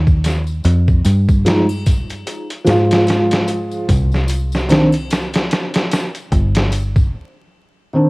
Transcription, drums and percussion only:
0.07 kick, tambourine
0.24 snare, closed hi-hat, tambourine
0.47 tambourine
0.64 closed hi-hat, tambourine
0.88 kick, tambourine
1.05 closed hi-hat, tambourine
1.29 kick, tambourine
1.46 snare, closed hi-hat, tambourine
1.69 tambourine, triangle
1.86 kick, closed hi-hat, tambourine
2.10 closed hi-hat, tambourine
2.27 closed hi-hat, tambourine
2.50 closed hi-hat, tambourine
2.66 snare, closed hi-hat, tambourine
2.91 snare, closed hi-hat, tambourine
3.07 snare, closed hi-hat, tambourine
3.31 snare, closed hi-hat, tambourine
3.48 closed hi-hat, tambourine
3.71 tambourine
3.89 kick, closed hi-hat, tambourine
4.12 snare, tambourine
4.28 closed hi-hat, tambourine
4.52 snare, tambourine
4.69 snare, closed hi-hat, tambourine
4.92 closed hi-hat, tambourine, triangle
5.10 snare, closed hi-hat, tambourine
5.33 snare, closed hi-hat, tambourine
5.51 snare, closed hi-hat, tambourine
5.74 snare, closed hi-hat, tambourine
5.91 snare, closed hi-hat, tambourine
6.15 closed hi-hat, tambourine
6.32 kick, closed hi-hat, tambourine
6.55 snare, closed hi-hat, tambourine
6.72 closed hi-hat, tambourine
6.96 kick, tambourine

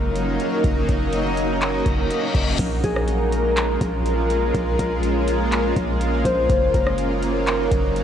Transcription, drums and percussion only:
0.16 closed hi-hat
0.40 closed hi-hat
0.64 kick, closed hi-hat
0.89 kick, closed hi-hat
1.13 closed hi-hat
1.37 closed hi-hat
1.62 clap, closed hi-hat
1.86 kick, closed hi-hat
2.11 closed hi-hat
2.35 kick, closed hi-hat
2.59 kick, closed hi-hat, crash
2.84 kick, closed hi-hat
2.96 cross-stick
3.08 closed hi-hat
3.32 closed hi-hat
3.57 clap, closed hi-hat
3.81 kick, closed hi-hat
4.06 closed hi-hat
4.30 closed hi-hat
4.54 kick, closed hi-hat
4.79 kick, closed hi-hat
5.03 closed hi-hat
5.27 closed hi-hat
5.52 clap, closed hi-hat
5.76 kick, closed hi-hat
6.01 closed hi-hat
6.25 kick, closed hi-hat
6.50 kick, closed hi-hat
6.74 kick, closed hi-hat
6.87 cross-stick
6.98 closed hi-hat
7.23 closed hi-hat
7.47 clap, closed hi-hat
7.71 kick, closed hi-hat
7.96 closed hi-hat

